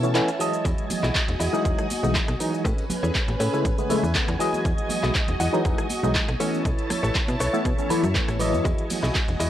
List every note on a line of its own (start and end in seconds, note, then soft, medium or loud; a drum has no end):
0.00 0.20 B2 medium
0.00 0.13 E3 medium
0.00 0.13 A3 medium
0.00 0.13 B3 medium
0.00 0.14 C#4 medium
0.00 0.63 E4 medium
0.00 0.63 C#5 medium
0.00 0.63 A5 medium
0.00 closed hi-hat soft
0.04 shaker soft
0.15 0.29 E3 medium
0.15 0.29 A3 medium
0.15 0.29 B3 medium
0.15 0.29 C#4 loud
0.15 0.28 E4 medium
0.15 0.28 A4 medium
0.15 0.28 B4 medium
0.15 0.28 D#5 medium
0.15 0.38 E5 medium
0.15 clap loud
0.15 closed hi-hat medium
0.15 shaker soft
0.28 cross-stick medium
0.28 closed hi-hat medium
0.28 shaker soft
0.39 1.50 E3 medium
0.39 1.50 F#3 medium
0.39 1.50 G#3 medium
0.39 1.51 D#5 loud
0.39 0.63 A5 medium
0.39 muted clean electric guitar stroke soft
0.39 open hi-hat medium
0.39 shaker medium
0.53 muted clean electric guitar stroke soft
0.53 closed hi-hat soft
0.53 shaker soft
0.65 0.73 E2 loud
0.65 0.84 E4 loud
0.65 0.84 F#4 loud
0.65 2.63 F#4 medium
0.65 0.84 G#4 loud
0.65 2.63 D#5 medium
0.65 0.84 D#5 loud
0.65 2.63 G#5 medium
0.65 kick loud
0.65 closed hi-hat medium
0.65 tambourine medium
0.65 shaker soft
0.78 closed hi-hat medium
0.90 open hi-hat loud
0.90 tambourine loud
0.90 high conga medium
0.90 low conga loud
0.90 shaker medium
1.03 1.11 B1 medium
1.03 1.22 E4 medium
1.03 1.22 F#4 medium
1.03 1.22 G#4 medium
1.03 1.22 D#5 loud
1.03 clap soft
1.03 tambourine soft
1.03 shaker soft
1.15 kick loud
1.15 clap loud
1.15 closed hi-hat medium
1.15 shaker soft
1.28 1.36 E1 loud
1.28 closed hi-hat medium
1.28 tambourine soft
1.28 high conga medium
1.40 1.48 E2 medium
1.40 1.78 E4 medium
1.40 1.78 F#4 medium
1.40 1.78 G#4 medium
1.40 1.78 D#5 loud
1.40 open hi-hat medium
1.40 tambourine loud
1.40 shaker medium
1.53 1.62 E3 loud
1.53 1.62 F#3 medium
1.53 1.62 G#3 medium
1.53 1.62 D#4 loud
1.53 tambourine soft
1.53 shaker soft
1.65 1.73 E1 loud
1.65 1.87 E3 medium
1.65 1.87 F#3 medium
1.65 1.87 G#3 medium
1.65 1.87 D#4 medium
1.65 kick loud
1.65 closed hi-hat medium
1.65 tambourine medium
1.65 shaker soft
1.79 cross-stick medium
1.79 closed hi-hat medium
1.79 shaker soft
1.90 open hi-hat loud
1.90 tambourine loud
1.90 high conga medium
1.90 shaker medium
2.03 2.18 B1 medium
2.03 2.24 E3 medium
2.03 2.25 F#3 medium
2.03 2.25 G#3 medium
2.03 2.25 D#4 loud
2.03 tambourine soft
2.03 shaker soft
2.15 2.28 E4 medium
2.15 2.28 F#4 medium
2.15 2.28 G#4 medium
2.15 2.29 D#5 medium
2.15 kick loud
2.15 clap loud
2.15 closed hi-hat medium
2.15 tambourine medium
2.15 shaker soft
2.28 2.36 B1 loud
2.28 cross-stick medium
2.28 closed hi-hat medium
2.28 tambourine soft
2.28 high conga medium
2.40 2.62 E3 medium
2.40 2.62 F#3 medium
2.40 2.62 G#3 medium
2.40 2.62 D#4 medium
2.40 muted clean electric guitar stroke soft
2.40 open hi-hat loud
2.40 tambourine loud
2.40 shaker medium
2.53 muted clean electric guitar stroke soft
2.53 tambourine soft
2.53 shaker soft
2.65 2.73 A2 loud
2.65 2.84 C#4 loud
2.65 4.38 C#4 medium
2.65 2.84 G#4 loud
2.65 2.84 A4 medium
2.65 4.38 B4 medium
2.65 2.84 B4 loud
2.65 6.36 G#5 medium
2.65 kick loud
2.65 closed hi-hat medium
2.65 tambourine medium
2.65 shaker soft
2.78 closed hi-hat medium
2.78 tambourine soft
2.90 open hi-hat loud
2.90 tambourine medium
2.90 high conga medium
2.90 low conga loud
2.90 shaker medium
3.03 3.11 E2 medium
3.03 3.22 C#4 medium
3.03 3.22 G#4 medium
3.03 3.22 A4 medium
3.03 3.22 C#5 medium
3.03 tambourine soft
3.03 shaker soft
3.14 kick loud
3.14 clap loud
3.14 closed hi-hat medium
3.14 tambourine medium
3.14 shaker soft
3.28 3.36 A1 loud
3.28 closed hi-hat medium
3.28 tambourine soft
3.28 high conga medium
3.40 3.48 A2 medium
3.40 3.78 C#4 medium
3.40 3.78 G#4 medium
3.40 3.78 A4 medium
3.40 3.78 C#5 medium
3.40 open hi-hat loud
3.40 tambourine loud
3.40 shaker medium
3.53 3.66 C#3 medium
3.53 3.66 G#3 medium
3.53 3.66 A3 medium
3.53 3.66 E4 loud
3.53 tambourine soft
3.53 shaker soft
3.65 3.73 A1 loud
3.65 kick loud
3.65 closed hi-hat medium
3.65 tambourine medium
3.65 shaker soft
3.78 3.88 C#3 medium
3.78 3.88 G#3 medium
3.78 3.88 A3 medium
3.78 3.88 B3 loud
3.78 closed hi-hat medium
3.78 shaker soft
3.90 4.04 C#3 medium
3.90 4.04 G#3 medium
3.90 4.04 A3 medium
3.90 4.04 E4 loud
3.90 3.98 C#5 medium
3.90 open hi-hat loud
3.90 tambourine medium
3.90 high conga medium
3.90 low conga medium
3.90 shaker medium
3.98 4.14 E5 medium
4.03 4.18 E2 medium
4.03 tambourine soft
4.03 shaker soft
4.14 4.37 C#3 medium
4.14 4.37 G#3 medium
4.14 4.37 A3 medium
4.14 4.38 B3 medium
4.14 4.28 C#4 medium
4.14 4.28 G#4 medium
4.14 4.28 A4 medium
4.14 4.28 B4 medium
4.14 4.38 F#5 medium
4.14 kick loud
4.14 clap loud
4.14 closed hi-hat medium
4.14 shaker soft
4.28 4.36 E2 loud
4.28 cross-stick medium
4.28 closed hi-hat medium
4.28 tambourine soft
4.39 5.50 E3 loud
4.39 5.50 F#3 medium
4.39 5.50 G#3 medium
4.39 4.90 E4 medium
4.39 6.38 F#4 medium
4.39 4.90 F#4 medium
4.39 4.90 G#4 medium
4.39 6.38 D#5 medium
4.39 4.90 D#5 loud
4.39 5.51 D#5 loud
4.39 4.63 G#5 medium
4.39 open hi-hat loud
4.39 tambourine medium
4.39 shaker medium
4.53 tambourine soft
4.53 high conga medium
4.53 shaker soft
4.65 4.73 E2 loud
4.65 kick loud
4.65 closed hi-hat medium
4.65 tambourine soft
4.65 shaker soft
4.78 closed hi-hat medium
4.89 open hi-hat loud
4.89 tambourine medium
4.89 high conga medium
4.89 low conga medium
4.89 shaker medium
5.03 5.11 B1 medium
5.03 5.22 E4 medium
5.03 5.22 F#4 medium
5.03 5.22 G#4 medium
5.03 5.22 D#5 loud
5.03 clap soft
5.03 tambourine soft
5.03 shaker soft
5.15 kick loud
5.15 clap loud
5.15 closed hi-hat medium
5.15 tambourine medium
5.15 shaker soft
5.28 5.36 E1 loud
5.28 closed hi-hat medium
5.28 tambourine soft
5.28 high conga medium
5.40 5.48 E2 medium
5.40 5.78 E4 medium
5.40 5.78 F#4 medium
5.40 5.78 G#4 medium
5.40 5.78 F#5 loud
5.40 open hi-hat loud
5.40 tambourine medium
5.40 shaker medium
5.53 5.62 E3 loud
5.53 5.62 F#3 medium
5.53 5.62 G#3 medium
5.53 5.62 D#4 loud
5.53 tambourine soft
5.53 shaker soft
5.65 5.73 E1 loud
5.65 5.86 E3 medium
5.65 5.87 F#3 medium
5.65 5.87 G#3 medium
5.65 5.87 D#4 medium
5.65 kick loud
5.65 closed hi-hat medium
5.65 tambourine medium
5.65 shaker soft
5.78 cross-stick medium
5.78 closed hi-hat medium
5.78 shaker soft
5.89 open hi-hat loud
5.89 tambourine medium
5.89 high conga medium
5.89 shaker medium
6.03 6.19 B1 medium
6.03 6.24 E3 medium
6.03 6.25 F#3 medium
6.03 6.25 G#3 medium
6.03 6.25 D#4 loud
6.03 tambourine soft
6.03 shaker soft
6.15 6.28 E4 medium
6.15 6.28 F#4 medium
6.15 6.28 G#4 medium
6.15 6.29 D#5 loud
6.15 kick loud
6.15 clap loud
6.15 closed hi-hat medium
6.15 shaker soft
6.28 6.36 B1 loud
6.28 cross-stick medium
6.28 closed hi-hat medium
6.28 tambourine soft
6.28 high conga medium
6.40 6.62 E3 medium
6.40 6.62 A3 medium
6.40 6.62 B3 medium
6.40 6.62 C#4 medium
6.40 8.63 E4 medium
6.40 6.90 E4 medium
6.40 6.90 A4 medium
6.40 6.90 B4 medium
6.40 8.63 C#5 medium
6.40 6.90 C#5 loud
6.40 8.63 A5 medium
6.40 open hi-hat loud
6.40 tambourine medium
6.40 shaker medium
6.53 tambourine soft
6.53 shaker soft
6.65 6.73 B1 loud
6.65 kick loud
6.65 closed hi-hat medium
6.65 tambourine medium
6.65 shaker soft
6.78 closed hi-hat soft
6.78 tambourine soft
6.90 cross-stick medium
6.90 open hi-hat loud
6.90 tambourine medium
6.90 high conga medium
6.90 low conga medium
6.90 shaker medium
7.03 7.11 A1 medium
7.03 7.22 E4 medium
7.03 7.22 A4 medium
7.03 7.22 B4 medium
7.03 7.22 C#5 loud
7.03 tambourine soft
7.03 shaker soft
7.15 kick loud
7.15 clap loud
7.15 closed hi-hat medium
7.15 tambourine medium
7.15 shaker soft
7.27 7.36 B2 loud
7.27 closed hi-hat soft
7.27 tambourine soft
7.27 high conga medium
7.27 shaker soft
7.40 7.49 B1 medium
7.40 7.78 E4 medium
7.40 7.78 A4 medium
7.40 7.78 B4 medium
7.40 7.79 C#5 loud
7.40 open hi-hat loud
7.40 tambourine medium
7.40 shaker medium
7.53 7.66 E3 medium
7.53 7.66 A3 medium
7.53 7.66 B3 medium
7.53 7.66 E4 loud
7.53 tambourine soft
7.53 shaker soft
7.65 7.73 B2 loud
7.65 kick loud
7.65 closed hi-hat medium
7.65 tambourine soft
7.65 shaker soft
7.78 7.88 E3 medium
7.78 7.88 A3 medium
7.78 7.88 B3 medium
7.78 7.88 C#4 medium
7.78 closed hi-hat soft
7.78 shaker soft
7.89 8.04 E3 medium
7.89 8.04 A3 medium
7.89 8.04 B3 medium
7.89 8.04 E4 loud
7.89 open hi-hat loud
7.89 tambourine medium
7.89 high conga medium
7.89 low conga medium
7.89 shaker medium
8.03 8.19 F#2 medium
8.03 closed hi-hat soft
8.03 tambourine soft
8.03 shaker soft
8.14 8.37 E3 medium
8.14 8.37 A3 medium
8.14 8.37 B3 medium
8.14 8.38 C#4 medium
8.14 8.28 E4 medium
8.14 8.28 A4 medium
8.14 8.28 B4 medium
8.14 8.28 C#5 loud
8.14 kick loud
8.14 clap loud
8.14 closed hi-hat medium
8.14 tambourine soft
8.14 shaker soft
8.28 8.55 A1 medium
8.28 cross-stick medium
8.28 closed hi-hat medium
8.28 tambourine soft
8.28 shaker soft
8.39 9.50 E3 medium
8.39 9.50 F#3 medium
8.39 9.50 G#3 medium
8.39 9.50 D#5 loud
8.39 muted clean electric guitar stroke soft
8.39 open hi-hat loud
8.39 tambourine medium
8.39 shaker medium
8.53 8.61 F#2 medium
8.53 muted clean electric guitar stroke soft
8.53 tambourine soft
8.53 high conga medium
8.53 shaker soft
8.65 8.73 E2 loud
8.65 8.84 E4 loud
8.65 8.84 F#4 loud
8.65 9.50 F#4 medium
8.65 8.84 G#4 loud
8.65 9.50 D#5 medium
8.65 8.84 D#5 loud
8.65 9.50 G#5 medium
8.65 kick loud
8.65 closed hi-hat medium
8.65 tambourine medium
8.65 shaker soft
8.78 closed hi-hat medium
8.90 open hi-hat loud
8.90 ride medium
8.90 tambourine medium
8.90 high conga medium
8.90 low conga medium
8.90 shaker medium
9.03 9.11 B1 medium
9.03 9.21 E4 medium
9.03 9.22 F#4 medium
9.03 9.22 G#4 medium
9.03 9.22 D#5 loud
9.03 clap soft
9.03 shaker soft
9.15 kick loud
9.15 clap loud
9.15 closed hi-hat medium
9.15 tambourine medium
9.15 shaker soft
9.28 9.36 E1 loud
9.28 closed hi-hat soft
9.28 tambourine soft
9.28 high conga medium
9.40 9.48 E2 medium
9.40 9.50 E4 medium
9.40 9.50 F#4 medium
9.40 9.50 G#4 medium
9.40 9.50 D#5 loud
9.40 open hi-hat loud
9.40 ride medium
9.40 tambourine medium
9.40 shaker medium